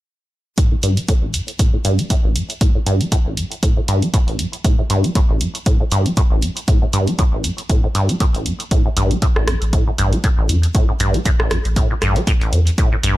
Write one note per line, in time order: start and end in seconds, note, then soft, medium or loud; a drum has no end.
0.58 0.69 A2 medium
0.58 kick loud
0.58 closed hi-hat medium
0.72 0.76 A2 medium
0.83 0.99 G2 loud
0.83 closed hi-hat medium
0.97 1.03 A3 loud
0.97 closed hi-hat medium
1.08 1.13 A2 loud
1.08 kick loud
1.08 closed hi-hat medium
1.23 1.35 A1 medium
1.34 1.42 G2 medium
1.34 closed hi-hat medium
1.48 closed hi-hat soft
1.59 1.71 A2 medium
1.59 kick loud
1.59 closed hi-hat medium
1.74 1.77 A2 medium
1.85 2.00 G2 loud
1.85 closed hi-hat medium
1.99 2.05 A3 loud
1.99 closed hi-hat medium
2.10 2.15 A2 medium
2.10 kick loud
2.10 closed hi-hat medium
2.24 2.37 A1 medium
2.36 2.43 G2 medium
2.36 closed hi-hat medium
2.50 closed hi-hat medium
2.61 2.73 A2 medium
2.61 kick loud
2.61 closed hi-hat medium
2.75 2.79 A2 medium
2.86 3.02 G2 medium
2.86 closed hi-hat medium
3.01 3.07 A3 loud
3.01 closed hi-hat soft
3.12 3.17 A2 medium
3.12 kick loud
3.12 closed hi-hat medium
3.26 3.39 A1 medium
3.37 3.45 G2 medium
3.37 closed hi-hat medium
3.52 closed hi-hat medium
3.63 3.74 A2 medium
3.63 kick loud
3.63 closed hi-hat medium
3.77 3.81 A2 medium
3.88 4.04 G2 loud
3.88 closed hi-hat medium
4.02 4.09 A3 loud
4.02 closed hi-hat medium
4.14 4.18 A2 medium
4.14 kick loud
4.14 closed hi-hat medium
4.28 4.41 A1 medium
4.28 closed hi-hat soft
4.39 4.47 G2 medium
4.39 closed hi-hat medium
4.53 closed hi-hat medium
4.64 4.76 A2 medium
4.64 kick loud
4.64 closed hi-hat medium
4.79 4.82 A2 medium
4.90 5.06 G2 loud
4.90 closed hi-hat medium
5.04 5.10 A3 loud
5.04 closed hi-hat medium
5.15 5.20 A2 loud
5.15 kick loud
5.15 closed hi-hat medium
5.30 5.42 A1 medium
5.41 5.49 G2 medium
5.41 closed hi-hat medium
5.55 closed hi-hat soft
5.66 5.78 A2 medium
5.66 kick loud
5.66 closed hi-hat medium
5.80 5.84 A2 medium
5.92 6.07 G2 loud
5.92 closed hi-hat medium
6.06 6.12 A3 loud
6.06 closed hi-hat soft
6.17 6.22 A2 loud
6.17 kick loud
6.17 closed hi-hat medium
6.31 6.44 A1 medium
6.42 6.50 G2 medium
6.42 closed hi-hat medium
6.57 closed hi-hat soft
6.68 6.80 A2 medium
6.68 kick loud
6.68 closed hi-hat medium
6.82 6.86 A2 medium
6.93 7.09 G2 loud
6.93 closed hi-hat medium
7.07 7.14 A3 loud
7.07 closed hi-hat soft
7.19 7.23 A2 medium
7.19 kick loud
7.19 closed hi-hat medium
7.33 7.46 A1 medium
7.44 7.52 G2 medium
7.44 closed hi-hat medium
7.58 closed hi-hat soft
7.70 7.81 A2 medium
7.70 kick loud
7.70 closed hi-hat medium
7.84 7.87 A2 medium
7.95 8.11 G2 loud
7.95 closed hi-hat medium
8.09 8.15 A3 loud
8.09 closed hi-hat medium
8.20 8.25 A2 loud
8.20 kick loud
8.20 closed hi-hat medium
8.35 8.47 A1 medium
8.35 closed hi-hat soft
8.46 8.54 G2 medium
8.46 closed hi-hat medium
8.60 closed hi-hat soft
8.71 8.83 A2 medium
8.71 kick loud
8.71 closed hi-hat medium
8.85 8.89 A2 medium
8.97 9.14 A1 medium
8.97 9.12 G2 loud
8.97 closed hi-hat medium
9.11 9.17 A3 loud
9.11 closed hi-hat soft
9.22 9.27 A2 loud
9.22 kick loud
9.22 closed hi-hat medium
9.36 9.49 A1 medium
9.36 cross-stick medium
9.47 9.57 A1 medium
9.47 9.55 G2 medium
9.47 cross-stick medium
9.47 closed hi-hat medium
9.62 9.77 A1 medium
9.62 closed hi-hat soft
9.73 9.85 A2 medium
9.73 kick loud
9.73 closed hi-hat medium
9.87 9.91 A2 medium
9.98 10.16 A1 medium
9.98 10.14 G2 medium
9.98 closed hi-hat medium
10.13 10.19 A3 loud
10.13 closed hi-hat soft
10.24 10.28 A2 loud
10.24 kick loud
10.24 closed hi-hat medium
10.38 10.51 A1 medium
10.49 10.67 E2 medium
10.49 10.57 G2 medium
10.49 closed hi-hat medium
10.63 closed hi-hat medium
10.75 10.86 A2 medium
10.75 kick loud
10.75 closed hi-hat medium
10.89 10.93 A2 medium
11.00 11.17 A1 loud
11.00 11.16 G2 loud
11.00 closed hi-hat medium
11.14 11.20 A3 loud
11.14 closed hi-hat soft
11.25 11.30 A2 loud
11.25 kick loud
11.25 closed hi-hat medium
11.40 11.52 A1 medium
11.40 cross-stick medium
11.51 11.60 A1 medium
11.51 11.59 G2 medium
11.51 cross-stick medium
11.51 closed hi-hat medium
11.65 11.80 A1 medium
11.65 closed hi-hat soft
11.76 11.88 A2 medium
11.76 kick loud
11.76 closed hi-hat medium
11.90 11.94 A2 medium
12.02 12.19 A1 loud
12.02 12.17 G2 loud
12.02 cross-stick medium
12.02 closed hi-hat medium
12.16 12.22 A3 loud
12.16 closed hi-hat soft
12.27 12.32 A2 loud
12.27 kick loud
12.27 closed hi-hat medium
12.41 12.54 A1 medium
12.41 closed hi-hat soft
12.53 12.70 E2 medium
12.53 12.60 G2 medium
12.53 closed hi-hat medium
12.67 closed hi-hat soft
12.78 12.90 A2 medium
12.78 kick loud
12.78 closed hi-hat medium
12.92 12.96 A2 medium
13.03 13.17 A1 medium
13.03 13.17 G2 loud
13.03 closed hi-hat medium